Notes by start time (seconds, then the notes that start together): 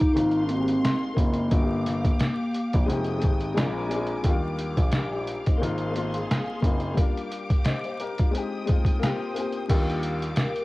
Already playing: G3 A#3 D#4 F4 G4 F5 D6
0.00 kick, closed hi-hat
0.13 G#1 G#3 A#3 C4 C6, closed hi-hat
0.17 D#4 F4
0.31 closed hi-hat
0.44 A#3 D4
0.49 C4 D#4, closed hi-hat
0.54 F#4
0.61 G4
0.68 closed hi-hat
0.85 snare, closed hi-hat
1.14 F#1 A#3 C4, kick
1.18 D#4 F4, closed hi-hat
1.34 closed hi-hat
1.50 G1 A#3 D4 F4 G4 F5 D6, kick, closed hi-hat
1.56 F#4
1.63 G4
1.86 snare, closed hi-hat
2.05 kick, closed hi-hat
2.19 snare, closed hi-hat
2.54 closed hi-hat
2.73 A#1, kick, closed hi-hat
2.86 F1 G#3 C4 G5 D#6, closed hi-hat
2.90 D#4 G4
3.04 closed hi-hat
3.19 G#3 C4, closed hi-hat
3.23 G#1 D#4 G4, kick
3.41 closed hi-hat
3.54 A#1 G#3 C4 A#4 G#5 D6, snare, closed hi-hat
3.58 D4 F4
3.89 G#3 C4, closed hi-hat
3.93 D4 G#4
4.07 closed hi-hat
4.23 D#2 F#3 A#3 G4 F5, kick, closed hi-hat
4.27 G3 D4 F4
4.59 closed hi-hat
4.77 A#1, kick, closed hi-hat
4.92 G4 A#4, snare, closed hi-hat
5.13 D#4 G4
5.27 closed hi-hat
5.46 C4 D#4, kick, closed hi-hat
5.57 A#3 C4 G#4 C6
5.62 G#1 D#4 F4, closed hi-hat
5.78 closed hi-hat
5.91 A#3 C4
5.95 D#4 F4, closed hi-hat
6.14 closed hi-hat
6.31 snare, closed hi-hat
6.61 F#1 A#3 C4, kick, closed hi-hat
6.65 D#4 F4
6.80 closed hi-hat
6.94 G3 A#3 G4 D6, kick, closed hi-hat
6.99 D4 F4
7.18 closed hi-hat
7.32 closed hi-hat
7.50 kick, closed hi-hat
7.64 C5 D#5, snare, closed hi-hat
7.84 C5, closed hi-hat
8.00 G4 A#4, closed hi-hat
8.18 D4 F4, kick, closed hi-hat
8.31 G#3 C4 G5 D#6, closed hi-hat
8.35 D#4 G4
8.66 G#3 C4, kick, closed hi-hat
8.70 D#4 F4
8.85 kick, closed hi-hat
8.99 A#3 C4 C5 D#6, closed hi-hat
9.03 F4 G4, snare
9.34 A#3 C4, closed hi-hat
9.38 F4 G4
9.52 closed hi-hat
9.68 D#2 G3 A#3 G4 F5 D6, kick, closed hi-hat, crash
9.72 D4 F4
9.90 closed hi-hat
10.03 closed hi-hat
10.22 closed hi-hat
10.36 snare, closed hi-hat
10.41 A#4
10.56 closed hi-hat